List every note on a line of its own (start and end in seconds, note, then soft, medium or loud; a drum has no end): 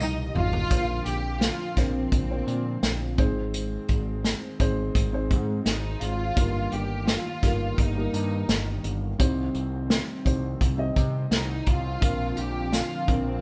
0.00 0.29 C2 medium
0.00 0.68 F3 medium
0.00 0.67 G3 medium
0.00 0.67 A#3 medium
0.00 0.68 D#4 medium
0.00 0.18 D#4 medium
0.00 0.70 F4 medium
0.00 0.67 G4 medium
0.00 0.73 G4 medium
0.00 0.71 A#4 medium
0.00 0.37 D#5 medium
0.00 0.72 D#5 medium
0.00 high tom medium
0.00 tambourine medium
0.35 0.64 G#1 medium
0.35 1.03 F4 loud
0.35 mid tom medium
0.53 floor tom medium
0.70 1.00 A#1 medium
0.70 1.73 A#2 soft
0.70 3.16 D3 medium
0.70 3.16 F3 medium
0.70 3.16 A#3 medium
0.70 6.32 C4 medium
0.70 1.67 D4 medium
0.70 1.67 F4 medium
0.70 3.16 F4 medium
0.70 1.68 A#4 medium
0.70 1.68 C5 medium
0.70 kick medium
0.70 closed hi-hat medium
1.06 1.50 A#1 medium
1.06 1.42 G4 medium
1.06 closed hi-hat medium
1.41 1.77 F4 medium
1.41 snare loud
1.41 closed hi-hat medium
1.41 tambourine medium
1.76 2.06 A#1 medium
1.76 3.18 C4 medium
1.76 2.25 D4 medium
1.76 2.25 F4 soft
1.76 2.25 A#4 soft
1.76 2.26 C5 medium
1.76 kick medium
1.76 snare soft
1.76 closed hi-hat medium
2.12 2.41 A#1 medium
2.12 kick medium
2.12 closed hi-hat medium
2.29 3.18 D4 medium
2.29 3.18 F4 medium
2.29 3.19 A#4 soft
2.29 3.18 C5 medium
2.47 2.76 A#2 medium
2.47 closed hi-hat medium
2.83 3.18 A#1 medium
2.83 snare medium
2.83 closed hi-hat medium
2.83 tambourine medium
3.17 3.76 G#1 medium
3.17 4.20 G#2 medium
3.17 11.98 D#3 medium
3.17 6.33 G#3 medium
3.17 4.47 C4 medium
3.17 4.47 D#4 medium
3.17 4.47 G#4 medium
3.17 4.48 C5 medium
3.17 kick medium
3.17 closed hi-hat medium
3.54 closed hi-hat loud
3.88 4.33 G#1 medium
3.88 kick medium
3.88 closed hi-hat medium
4.24 snare medium
4.24 closed hi-hat medium
4.24 tambourine medium
4.59 4.89 G#1 medium
4.59 5.08 C4 medium
4.59 5.08 D#4 medium
4.59 5.08 G#4 medium
4.59 5.09 C5 medium
4.59 kick medium
4.59 closed hi-hat medium
4.95 5.32 G#1 medium
4.95 kick medium
4.95 closed hi-hat medium
5.12 6.25 C4 medium
5.12 6.26 D#4 medium
5.12 6.26 G#4 medium
5.12 6.26 C5 medium
5.30 5.60 G#2 medium
5.30 kick medium
5.30 closed hi-hat soft
5.66 5.95 G#1 medium
5.66 5.99 D#4 medium
5.66 snare medium
5.66 closed hi-hat medium
5.66 tambourine medium
6.01 6.30 G#1 medium
6.01 6.72 F4 medium
6.01 closed hi-hat medium
6.36 6.66 G1 medium
6.36 7.39 G2 medium
6.36 11.98 G3 medium
6.36 7.33 A#3 medium
6.36 9.17 A#3 medium
6.36 7.33 D#4 medium
6.36 7.33 G4 medium
6.36 7.34 A#4 medium
6.36 kick medium
6.36 closed hi-hat medium
6.72 7.16 G1 medium
6.72 7.08 G4 medium
6.72 closed hi-hat medium
7.07 7.78 F4 medium
7.07 snare loud
7.07 closed hi-hat medium
7.07 tambourine medium
7.42 7.72 G1 medium
7.42 7.91 A#3 medium
7.42 7.91 D#4 medium
7.42 7.91 G4 medium
7.42 7.92 A#4 medium
7.42 kick medium
7.42 snare soft
7.42 closed hi-hat medium
7.78 8.07 G1 medium
7.78 8.85 D#4 medium
7.78 kick medium
7.78 closed hi-hat medium
7.96 9.08 A#3 medium
7.96 9.08 D#4 medium
7.96 9.09 G4 medium
7.96 9.09 A#4 medium
8.13 8.42 G2 medium
8.13 closed hi-hat medium
8.48 8.78 G1 medium
8.48 snare medium
8.48 closed hi-hat medium
8.48 tambourine medium
8.84 9.13 G1 medium
8.84 closed hi-hat medium
9.19 9.49 C2 loud
9.19 10.22 C3 medium
9.19 10.16 C4 medium
9.19 13.41 C4 medium
9.19 10.16 D#4 medium
9.19 10.16 G4 medium
9.19 10.17 C5 medium
9.19 kick medium
9.19 closed hi-hat medium
9.54 9.98 C2 medium
9.54 closed hi-hat soft
9.90 snare loud
9.90 closed hi-hat medium
9.90 tambourine medium
10.25 10.54 C2 medium
10.25 10.73 C4 medium
10.25 10.74 D#4 medium
10.25 10.74 G4 medium
10.25 10.74 C5 medium
10.25 kick medium
10.25 closed hi-hat medium
10.61 10.90 C2 medium
10.61 kick medium
10.61 closed hi-hat medium
10.77 11.90 C4 medium
10.77 11.91 D#4 medium
10.77 11.91 G4 medium
10.77 11.91 D#5 medium
10.96 11.25 C3 medium
10.96 kick medium
10.96 closed hi-hat medium
11.31 11.60 C2 medium
11.31 11.65 D#4 medium
11.31 snare medium
11.31 closed hi-hat medium
11.31 tambourine medium
11.66 11.96 C2 medium
11.66 12.38 F4 medium
11.66 kick medium
11.66 closed hi-hat medium
12.01 12.31 A#1 medium
12.01 13.04 A#2 medium
12.01 13.41 D3 medium
12.01 13.41 F3 medium
12.01 13.41 A#3 medium
12.01 12.98 C4 medium
12.01 12.98 D4 medium
12.01 13.41 F4 medium
12.01 12.98 F4 medium
12.01 12.99 A#4 medium
12.01 kick medium
12.01 closed hi-hat medium
12.37 12.81 A#1 medium
12.37 12.74 G4 medium
12.37 closed hi-hat medium
12.73 13.09 F4 medium
12.73 snare loud
12.73 closed hi-hat medium
12.73 tambourine medium
13.07 13.37 A#1 medium
13.07 13.41 C4 medium
13.07 13.41 D4 medium
13.07 13.41 F4 medium
13.07 13.41 A#4 medium
13.07 kick medium
13.07 closed hi-hat medium